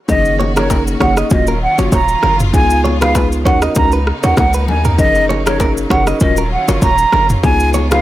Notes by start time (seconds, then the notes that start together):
0.08 F#1 D#3 A#3 C#4 D#4 F#4 G#4 D#5, kick, low conga, shaker
0.25 shaker
0.40 C#5, high bongo, low bongo
0.56 A#3 C#4 D#4 G#4 A#4 C#5, cross-stick, low bongo, shaker
0.70 A#4, kick, high bongo, shaker
0.87 shaker
1.00 F#1 A#3 C#4 D#4 G#4 C#5 F#5, kick, cross-stick, low bongo
1.17 D#5, cross-stick, shaker
1.30 D#1 D#3 F#3 A#3 C#4 F4 F#4 D#5, kick, low conga, shaker
1.47 A#4, shaker
1.63 F#5
1.78 F#1 A#3 C#4 F4 F#4 C#5, low bongo, shaker
1.92 D#1 C#5 A#5, kick, high bongo, shaker
2.08 shaker
2.23 F#1 A#4, cross-stick, low conga
2.40 mid tom, shaker
2.53 C#2 C#3 G#3 B3 D#4 F4 G#4 G#5, kick, low conga, shaker
2.70 shaker
2.84 C#5, high bongo, low bongo
3.01 B3 D#4 F4 G#4 B4 F5, cross-stick, low bongo, shaker
3.15 B4, kick, high bongo, shaker
3.32 shaker
3.45 D#2 A#3 B3 C#4 D#4 F#4 A#4 C#5 F#5, kick, low bongo
3.62 D#5, cross-stick, shaker
3.75 C#2 C#4 D#4 F#4 A#4 A#5, kick, low conga, shaker
3.92 B4, shaker
4.07 cross-stick
4.23 D#2 C#4 D#4 F#4 A#4 C#5 F#5, low bongo, shaker
4.37 C#2 F#5, kick, cross-stick, high bongo, shaker
4.53 B4, shaker
4.68 D#2 G#5, low conga
4.85 A#4, mid tom, shaker
4.98 F#1 F#3 C#4 D#4 G#4 A#4 D#5, kick, low conga, shaker
5.15 shaker
5.29 C#5, high bongo, low bongo
5.46 C#4 D#4 G#4 A#4 C#5, cross-stick, low bongo, shaker
5.60 A#4, kick, high bongo, shaker
5.77 shaker
5.90 F#1 C#4 D#4 G#4 A#4 C#5 F#5, kick, cross-stick, low bongo
6.07 D#5, cross-stick, shaker
6.20 D#1 D#3 C#4 F4 F#4 A#4 D#5, kick, low conga, shaker
6.37 A#4, shaker
6.52 F#5
6.68 F#1 C#4 F4 F#4 A#4 C#5, low bongo, shaker
6.82 D#1 C#5 A#5, kick, high bongo, shaker
6.98 shaker
7.12 F#1 A#4, cross-stick, low conga
7.30 mid tom, shaker
7.43 C#2 C#3 G#3 B3 D#4 F4 G#4 G#5, kick, low conga, shaker
7.60 shaker
7.74 C#5, high bongo, low bongo, shaker
7.91 B3 D#4 F4 G#4 B4 F5, cross-stick, low bongo, shaker